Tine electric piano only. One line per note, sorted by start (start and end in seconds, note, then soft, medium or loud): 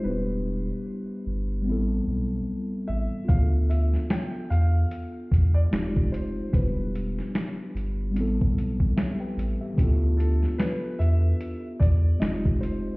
0.00 1.61 G3 medium
0.00 1.63 B3 medium
0.05 1.64 D4 medium
0.05 1.65 E4 medium
0.10 1.67 G4 medium
1.62 3.23 G3 medium
1.62 3.24 B3 medium
1.67 3.26 C4 medium
1.67 3.27 E4 medium
1.72 3.28 A4 medium
3.25 5.67 B3 medium
3.25 5.66 F4 medium
3.30 5.69 D4 medium
3.34 3.39 G#4 medium
3.41 5.74 A4 medium
5.70 6.52 G#3 medium
5.70 6.53 C4 medium
5.70 6.54 D#4 medium
5.70 6.54 F4 medium
5.75 6.55 G4 medium
6.49 8.10 G3 medium
6.49 8.11 B3 soft
6.54 8.13 D4 medium
6.54 8.14 E4 medium
6.59 6.63 F4 medium
6.65 8.18 G4 medium
8.11 9.72 G3 medium
8.11 9.73 B3 medium
8.16 9.75 C4 medium
8.16 9.76 E4 medium
8.21 8.98 A4 medium
8.97 9.19 G4 medium
8.97 9.19 E5 medium
9.20 9.59 B4 medium
9.20 9.58 G5 medium
9.61 9.99 G4 medium
9.61 9.99 E5 medium
9.73 9.83 E3 medium
9.73 12.16 B3 medium
9.78 12.17 D4 medium
9.78 12.18 E4 medium
9.78 12.18 F4 medium
9.83 12.20 A4 medium
12.19 12.97 G#3 medium
12.19 12.97 C4 medium
12.19 12.97 D#4 medium
12.19 12.97 F4 medium
12.24 12.97 G4 medium